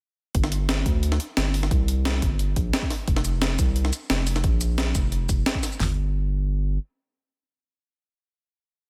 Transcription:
0.35 sub bass G1, kick, closed hi-hat
0.44 snare
0.52 closed hi-hat
0.69 snare, closed hi-hat
0.86 sub bass D2, kick, closed hi-hat
1.03 closed hi-hat
1.12 snare
1.20 closed hi-hat
1.37 sub bass G1, snare, closed hi-hat
1.54 open hi-hat
1.63 snare
1.71 sub bass C2, kick, closed hi-hat
1.88 closed hi-hat
2.05 snare, closed hi-hat
2.22 sub bass G1, kick, closed hi-hat
2.39 closed hi-hat
2.56 sub bass A#1, kick, closed hi-hat
2.73 snare, closed hi-hat
2.82 kick
2.90 snare, open hi-hat
3.08 sub bass F1, kick, closed hi-hat
3.16 snare
3.25 closed hi-hat, shaker
3.42 snare, closed hi-hat, shaker
3.59 sub bass C2, kick, closed hi-hat, shaker
3.76 closed hi-hat
3.85 snare
3.93 closed hi-hat, shaker
4.10 sub bass F1, snare, closed hi-hat
4.27 open hi-hat, shaker
4.36 snare, shaker
4.44 sub bass A#1, kick, closed hi-hat
4.61 closed hi-hat, shaker
4.78 snare, closed hi-hat, shaker
4.95 sub bass F1, kick, closed hi-hat, shaker
5.12 closed hi-hat
5.29 sub bass F1, kick, closed hi-hat, shaker
5.46 snare, closed hi-hat
5.55 kick
5.63 snare, open hi-hat, shaker
5.72 shaker
5.80 sub bass G1, snare, floor tom, open hi-hat

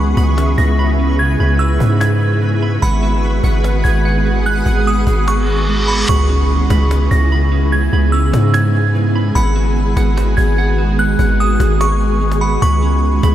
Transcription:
Already playing: 808-style bass C#2, ambient pad C#3 G#3 B3 E4 G#4, clean electric guitar C#4 B5, synth texture B4 E5 C#6, synth bell C#6
0.17 808-style bass C#2, clean electric guitar B5, cajon bass
0.37 clean electric guitar C#4, cajon slap
0.58 808-style bass C#2, synth bell A#6, cajon bass
0.79 clean electric guitar B5, cajon slap
0.99 clean electric guitar C#4
1.19 clean electric guitar C#3, synth bell G#6, cajon slap
1.40 808-style bass C#2, clean electric guitar B5, cajon slap
1.59 clean electric guitar C#4, synth bell E6, cajon slap
1.80 808-style bass G#2, clean electric guitar C#3, cajon bass
2.01 synth bell G#6, cajon slap
2.21 cajon slap
2.42 clean electric guitar C#3, cajon slap
2.62 clean electric guitar B5
2.82 808-style bass G#1, ambient pad D#3 G#3 B3 F#4 G#4, synth texture G#4 F#5 B5, clean electric guitar F#5, synth bell B5, cajon bass
3.03 clean electric guitar F#4, cajon slap
3.23 cajon slap
3.44 808-style bass G#1, clean electric guitar F#5, cajon bass
3.64 clean electric guitar F#4, cajon slap
3.84 808-style bass G#1, synth bell G#6, cajon bass
4.05 clean electric guitar F#5, cajon slap
4.25 clean electric guitar F#4
4.46 clean electric guitar G#3, synth bell F#6, cajon slap
4.66 808-style bass G#1, clean electric guitar F#5, cajon bass
4.86 clean electric guitar F#4, synth bell D#6, cajon slap
5.07 808-style bass G#1, clean electric guitar G#3, cajon bass
5.14 cajon slap
5.21 cajon slap
5.27 synth bell C#6, cajon slap, reverse cymbal
5.34 cajon slap
5.48 cajon slap
5.68 clean electric guitar G#3, cajon slap
5.88 clean electric guitar F#5, synth bell B5
6.09 808-style bass C#2, ambient pad C#3 G#3 B3 E4 G#4, clean electric guitar B5, synth bell C#6, cajon bass, impact
6.29 clean electric guitar C#4, cajon slap
6.50 cajon slap
6.70 808-style bass C#2, clean electric guitar B5, cajon bass, cajon slap
6.90 clean electric guitar C#4, cajon slap
7.11 808-style bass C#2, synth bell A#6, cajon bass
7.32 clean electric guitar B5, cajon slap
7.52 clean electric guitar C#4
7.72 clean electric guitar C#3, synth bell G#6, cajon slap
7.93 808-style bass C#2, clean electric guitar B5, cajon slap
8.12 clean electric guitar C#4, synth bell E6, cajon slap
8.33 808-style bass G#2, clean electric guitar C#3, cajon bass, cajon slap
8.54 synth bell G#6, cajon slap
8.74 cajon slap
8.95 clean electric guitar C#3, cajon slap
9.16 clean electric guitar B5
9.35 808-style bass G#1, ambient pad D#3 F#4, clean electric guitar F#5, synth bell B5, cajon bass
9.56 clean electric guitar F#4, cajon slap
9.76 cajon slap
9.97 808-style bass G#1, clean electric guitar F#5, cajon bass, cajon slap
10.17 clean electric guitar F#4, cajon slap
10.37 808-style bass G#1, synth bell G#6, cajon bass
10.58 clean electric guitar F#5, cajon slap
10.78 clean electric guitar F#4
10.99 clean electric guitar G#3, synth bell F#6, cajon slap
11.19 808-style bass G#1, clean electric guitar F#5, cajon bass
11.39 clean electric guitar F#4, synth bell D#6, cajon slap
11.60 808-style bass G#1, clean electric guitar G#3, cajon bass, cajon slap
11.67 cajon slap
11.74 cajon slap
11.81 synth bell C#6, cajon slap
11.94 cajon slap
12.01 cajon slap
12.21 clean electric guitar G#3, cajon slap
12.32 cajon slap
12.41 clean electric guitar F#5, synth bell B5
12.62 808-style bass C#2, ambient pad C#3 B3 E4, synth texture B4 E5 C#6, clean electric guitar B5, synth bell C#6, cajon bass
12.83 clean electric guitar C#4, cajon slap
13.03 cajon slap
13.23 808-style bass C#2, clean electric guitar B5, cajon bass, cajon slap

